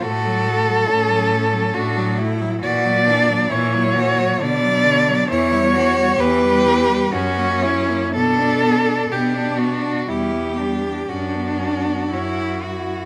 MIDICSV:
0, 0, Header, 1, 5, 480
1, 0, Start_track
1, 0, Tempo, 855920
1, 19, Time_signature, 3, 2, 24, 8
1, 979, Tempo, 888889
1, 3379, Tempo, 937500
1, 3859, Tempo, 1018676
1, 4339, Tempo, 969305
1, 5299, Tempo, 1023891
1, 6690, End_track
2, 0, Start_track
2, 0, Title_t, "Cello"
2, 0, Program_c, 0, 42
2, 14, Note_on_c, 0, 69, 127
2, 976, Note_on_c, 0, 66, 107
2, 984, Note_off_c, 0, 69, 0
2, 1217, Note_off_c, 0, 66, 0
2, 1458, Note_on_c, 0, 74, 127
2, 1936, Note_on_c, 0, 73, 115
2, 1944, Note_off_c, 0, 74, 0
2, 2421, Note_on_c, 0, 74, 127
2, 2429, Note_off_c, 0, 73, 0
2, 2896, Note_off_c, 0, 74, 0
2, 2899, Note_on_c, 0, 73, 127
2, 3384, Note_on_c, 0, 71, 127
2, 3391, Note_off_c, 0, 73, 0
2, 3861, Note_on_c, 0, 61, 127
2, 3869, Note_off_c, 0, 71, 0
2, 4338, Note_off_c, 0, 61, 0
2, 4341, Note_on_c, 0, 69, 127
2, 4817, Note_on_c, 0, 67, 98
2, 4825, Note_off_c, 0, 69, 0
2, 5053, Note_on_c, 0, 66, 95
2, 5061, Note_off_c, 0, 67, 0
2, 5300, Note_on_c, 0, 64, 101
2, 5307, Note_off_c, 0, 66, 0
2, 5540, Note_on_c, 0, 62, 83
2, 5547, Note_off_c, 0, 64, 0
2, 5771, Note_off_c, 0, 62, 0
2, 5774, Note_on_c, 0, 62, 108
2, 6257, Note_on_c, 0, 61, 75
2, 6264, Note_off_c, 0, 62, 0
2, 6500, Note_off_c, 0, 61, 0
2, 6503, Note_on_c, 0, 64, 74
2, 6690, Note_off_c, 0, 64, 0
2, 6690, End_track
3, 0, Start_track
3, 0, Title_t, "Cello"
3, 0, Program_c, 1, 42
3, 15, Note_on_c, 1, 66, 96
3, 495, Note_on_c, 1, 61, 89
3, 504, Note_off_c, 1, 66, 0
3, 974, Note_on_c, 1, 62, 95
3, 983, Note_off_c, 1, 61, 0
3, 1215, Note_on_c, 1, 64, 93
3, 1223, Note_off_c, 1, 62, 0
3, 1443, Note_off_c, 1, 64, 0
3, 1446, Note_on_c, 1, 66, 98
3, 1686, Note_off_c, 1, 66, 0
3, 1690, Note_on_c, 1, 62, 93
3, 1924, Note_on_c, 1, 64, 86
3, 1932, Note_off_c, 1, 62, 0
3, 2164, Note_on_c, 1, 66, 99
3, 2173, Note_off_c, 1, 64, 0
3, 2412, Note_on_c, 1, 62, 95
3, 2420, Note_off_c, 1, 66, 0
3, 2898, Note_on_c, 1, 64, 100
3, 2906, Note_off_c, 1, 62, 0
3, 3130, Note_off_c, 1, 64, 0
3, 3133, Note_on_c, 1, 66, 103
3, 3372, Note_on_c, 1, 67, 103
3, 3380, Note_off_c, 1, 66, 0
3, 3854, Note_on_c, 1, 66, 97
3, 3862, Note_off_c, 1, 67, 0
3, 4093, Note_on_c, 1, 64, 91
3, 4100, Note_off_c, 1, 66, 0
3, 4334, Note_on_c, 1, 62, 95
3, 4341, Note_off_c, 1, 64, 0
3, 4808, Note_off_c, 1, 62, 0
3, 4811, Note_on_c, 1, 62, 87
3, 5288, Note_off_c, 1, 62, 0
3, 5297, Note_on_c, 1, 67, 86
3, 5770, Note_on_c, 1, 66, 77
3, 5777, Note_off_c, 1, 67, 0
3, 6690, Note_off_c, 1, 66, 0
3, 6690, End_track
4, 0, Start_track
4, 0, Title_t, "Cello"
4, 0, Program_c, 2, 42
4, 17, Note_on_c, 2, 57, 68
4, 143, Note_on_c, 2, 54, 65
4, 151, Note_off_c, 2, 57, 0
4, 262, Note_on_c, 2, 57, 64
4, 271, Note_off_c, 2, 54, 0
4, 381, Note_on_c, 2, 54, 57
4, 390, Note_off_c, 2, 57, 0
4, 498, Note_off_c, 2, 54, 0
4, 501, Note_on_c, 2, 57, 68
4, 615, Note_on_c, 2, 54, 66
4, 623, Note_off_c, 2, 57, 0
4, 737, Note_on_c, 2, 57, 67
4, 745, Note_off_c, 2, 54, 0
4, 855, Note_on_c, 2, 54, 68
4, 864, Note_off_c, 2, 57, 0
4, 975, Note_off_c, 2, 54, 0
4, 978, Note_on_c, 2, 57, 69
4, 1095, Note_on_c, 2, 54, 75
4, 1103, Note_off_c, 2, 57, 0
4, 1216, Note_on_c, 2, 57, 69
4, 1224, Note_off_c, 2, 54, 0
4, 1338, Note_on_c, 2, 54, 68
4, 1347, Note_off_c, 2, 57, 0
4, 1455, Note_off_c, 2, 54, 0
4, 1459, Note_on_c, 2, 52, 79
4, 1577, Note_on_c, 2, 54, 75
4, 1586, Note_off_c, 2, 52, 0
4, 1697, Note_on_c, 2, 52, 72
4, 1705, Note_off_c, 2, 54, 0
4, 1812, Note_on_c, 2, 54, 64
4, 1820, Note_off_c, 2, 52, 0
4, 1931, Note_off_c, 2, 54, 0
4, 1934, Note_on_c, 2, 52, 79
4, 2055, Note_on_c, 2, 54, 76
4, 2063, Note_off_c, 2, 52, 0
4, 2174, Note_on_c, 2, 52, 76
4, 2182, Note_off_c, 2, 54, 0
4, 2295, Note_on_c, 2, 54, 77
4, 2303, Note_off_c, 2, 52, 0
4, 2410, Note_off_c, 2, 54, 0
4, 2414, Note_on_c, 2, 50, 75
4, 2539, Note_on_c, 2, 54, 75
4, 2547, Note_off_c, 2, 50, 0
4, 2657, Note_on_c, 2, 50, 75
4, 2665, Note_off_c, 2, 54, 0
4, 2779, Note_on_c, 2, 54, 71
4, 2787, Note_off_c, 2, 50, 0
4, 2895, Note_off_c, 2, 54, 0
4, 2898, Note_on_c, 2, 52, 80
4, 3015, Note_on_c, 2, 55, 73
4, 3023, Note_off_c, 2, 52, 0
4, 3138, Note_on_c, 2, 52, 74
4, 3146, Note_off_c, 2, 55, 0
4, 3256, Note_on_c, 2, 55, 68
4, 3264, Note_off_c, 2, 52, 0
4, 3375, Note_off_c, 2, 55, 0
4, 3378, Note_on_c, 2, 52, 81
4, 3499, Note_on_c, 2, 55, 73
4, 3506, Note_off_c, 2, 52, 0
4, 3617, Note_on_c, 2, 52, 70
4, 3625, Note_off_c, 2, 55, 0
4, 3735, Note_on_c, 2, 55, 72
4, 3743, Note_off_c, 2, 52, 0
4, 3852, Note_off_c, 2, 55, 0
4, 3855, Note_on_c, 2, 61, 67
4, 3974, Note_on_c, 2, 58, 71
4, 3981, Note_off_c, 2, 61, 0
4, 4095, Note_on_c, 2, 61, 71
4, 4102, Note_off_c, 2, 58, 0
4, 4218, Note_on_c, 2, 58, 70
4, 4225, Note_off_c, 2, 61, 0
4, 4334, Note_off_c, 2, 58, 0
4, 4337, Note_on_c, 2, 59, 72
4, 4457, Note_on_c, 2, 62, 71
4, 4465, Note_off_c, 2, 59, 0
4, 4577, Note_on_c, 2, 59, 68
4, 4584, Note_off_c, 2, 62, 0
4, 4693, Note_on_c, 2, 62, 58
4, 4700, Note_off_c, 2, 59, 0
4, 4807, Note_off_c, 2, 62, 0
4, 4810, Note_on_c, 2, 59, 68
4, 4927, Note_on_c, 2, 62, 64
4, 4935, Note_off_c, 2, 59, 0
4, 5048, Note_on_c, 2, 59, 62
4, 5055, Note_off_c, 2, 62, 0
4, 5168, Note_on_c, 2, 62, 61
4, 5175, Note_off_c, 2, 59, 0
4, 5288, Note_off_c, 2, 62, 0
4, 5291, Note_on_c, 2, 55, 59
4, 5413, Note_on_c, 2, 59, 61
4, 5420, Note_off_c, 2, 55, 0
4, 5533, Note_on_c, 2, 55, 58
4, 5540, Note_off_c, 2, 59, 0
4, 5652, Note_on_c, 2, 59, 51
4, 5659, Note_off_c, 2, 55, 0
4, 5764, Note_off_c, 2, 59, 0
4, 5767, Note_on_c, 2, 61, 57
4, 5892, Note_on_c, 2, 59, 56
4, 5899, Note_off_c, 2, 61, 0
4, 6008, Note_on_c, 2, 61, 52
4, 6015, Note_off_c, 2, 59, 0
4, 6127, Note_on_c, 2, 59, 50
4, 6134, Note_off_c, 2, 61, 0
4, 6245, Note_off_c, 2, 59, 0
4, 6248, Note_on_c, 2, 64, 80
4, 6491, Note_on_c, 2, 66, 65
4, 6498, Note_off_c, 2, 64, 0
4, 6690, Note_off_c, 2, 66, 0
4, 6690, End_track
5, 0, Start_track
5, 0, Title_t, "Cello"
5, 0, Program_c, 3, 42
5, 17, Note_on_c, 3, 45, 86
5, 443, Note_off_c, 3, 45, 0
5, 498, Note_on_c, 3, 45, 82
5, 921, Note_off_c, 3, 45, 0
5, 977, Note_on_c, 3, 45, 89
5, 1400, Note_off_c, 3, 45, 0
5, 1454, Note_on_c, 3, 46, 104
5, 1877, Note_off_c, 3, 46, 0
5, 1928, Note_on_c, 3, 46, 98
5, 2356, Note_off_c, 3, 46, 0
5, 2414, Note_on_c, 3, 47, 95
5, 2839, Note_off_c, 3, 47, 0
5, 2892, Note_on_c, 3, 40, 110
5, 3318, Note_off_c, 3, 40, 0
5, 3375, Note_on_c, 3, 40, 102
5, 3799, Note_off_c, 3, 40, 0
5, 3853, Note_on_c, 3, 42, 90
5, 4280, Note_off_c, 3, 42, 0
5, 4337, Note_on_c, 3, 47, 95
5, 4756, Note_off_c, 3, 47, 0
5, 4810, Note_on_c, 3, 47, 82
5, 5239, Note_off_c, 3, 47, 0
5, 5298, Note_on_c, 3, 40, 78
5, 5717, Note_off_c, 3, 40, 0
5, 5772, Note_on_c, 3, 42, 73
5, 6194, Note_off_c, 3, 42, 0
5, 6252, Note_on_c, 3, 42, 68
5, 6681, Note_off_c, 3, 42, 0
5, 6690, End_track
0, 0, End_of_file